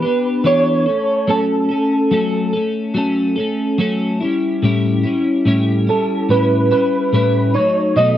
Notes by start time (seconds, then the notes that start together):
Already playing: B4
0.02 D4 G4
0.06 B3
0.44 E3 B3 D4 G4 C#5
0.86 A3 C#4 A4
1.28 F#3 A3 C#4 A4
1.69 A3 C#4 A4
2.11 F#3 A3 C#4 A4
2.53 A3 C#4 A4
2.94 F#3 A3 C#4
2.98 A4
3.36 A3 C#4 A4
3.78 F#3 A3 C#4 A4
4.20 C#4 E4
4.24 G3
4.62 A2 G3 C#4 E4
5.03 G3 C#4 E4
5.45 A2 G3 C#4 E4
5.87 G3 C#4 E4 A4
6.29 A2 G3 C#4 E4 B4
6.71 G3 C#4 E4 B4
7.13 A2 G3 C#4 E4
7.54 F#3 A3 D#4 C#5
7.96 B2 F#3 A3 D#4 D#5